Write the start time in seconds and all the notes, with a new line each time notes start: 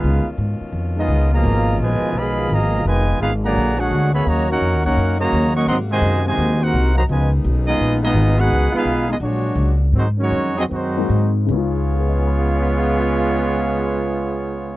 Already playing: G#3 B3 D#4 F4 G#4 B4 F5
0.03 C#2 B2 D#3 C#4 F4
0.26 muted upright bass stroke
0.38 G#2
0.61 muted upright bass stroke
0.72 F2
0.97 G#3 B3 D#4 F4 G#4 D#5
1.08 C#2
1.33 B2 F3 A#3 G#4 D#5 F5 A#5
1.44 G#1
1.77 A#1 B2 F3 G#3
1.82 F4 B4 D#5 G#5
2.00 muted upright bass stroke
2.13 B1 F3 G#3 B3
2.18 G#4 D#5 F5 B5
2.49 G#1 B2 F3 A#3 G#4 D#5 F5 A#5
2.85 F1 B2 D#3 G#3 F4 B4 D#5 G#5
3.19 G#1 G#3 B3 D#4 F4 G#4 B4 F5
3.44 D3 F#3 A#3 G#4 D5 F#5 A#5
3.55 A#1 D3 A#3 F#4
3.79 G#3 D4 F#4 G#4 C#5 F#5
3.91 D2
4.14 B3 G#4 C#5 E5 B5
4.26 D#2 C#3 D#3 F#3 A#3 C#4 F#4 C#5 D#5 A#5
4.50 A#3 C#4 D#4 F#4 A#4 C#5 F#5
4.61 F2
4.73 D#2
4.84 C#2 A#3 C#4 D#4 F#4 A#4 C#5 F#5
4.97 F#2
5.20 C#3 F#3 A#3 F#4 C#5 D#5 A#5
5.32 D#2
5.56 F#3 A#3 C#4 A#4 D#5 F#5 C#6
5.67 G#2 C3 D#3 F#3 G#3 C4 A#4 D#5 F#5 C6
5.91 C3 D#3 G#3 F#4 C5 D#5 G#5
6.01 F#2
6.26 C3 D#3 G#3 F#4 C5 D#5 G#5
6.37 D#2
6.60 C4 D#4 F#4 A#4 C5 F#5
6.74 C2
6.95 D#3 F#3 A#3 F#4 C5 D#5 A#5
7.07 C#2 B2 F3 G#3 D#5 G#5
7.11 C#3 D#3 B3 D#4 F4 B4
7.44 B1
7.66 G#3 B3 D#4 F4 G#4 D#5
7.79 A#1
8.03 G#3 B3 D#4 F4 G#4 D#5
8.14 G#1
8.37 G#3 B3 D#4 F#4 G#4 B4 F#5
8.49 C#2
8.72 G#3 B3 D#4 F4 F5
8.76 G#4 B4
8.85 B1
9.10 G#3 B3 D#4 F4 G#4 D#5
9.20 A#1 F#3 G#3 A#3 D4 F#4 C#5
9.55 C#2
9.93 G#2 D#3 F#3 C4
9.98 G#3 D#4 F#4 C5
10.18 D#3 F#3 G#3 C#4 F#4 C#5
10.22 D#4
10.31 F2
10.57 F#3 C4 D#4 F#4 G#4 D#5
10.69 F#2 D#3 F#3 G#3 C4
10.73 D#4 F#4 C5
10.97 G#3 A#3 C4 D#4 F#4
11.09 G#2
11.45 C#2 C#3 G#3
11.49 C#3 G#3 B3 C#4 F4 G#4 C#5
11.54 D#4 F4
11.92 G#4
12.00 B4
12.08 D#5
12.17 G#5
12.27 B5
12.38 D#6
12.49 G#6
12.62 B6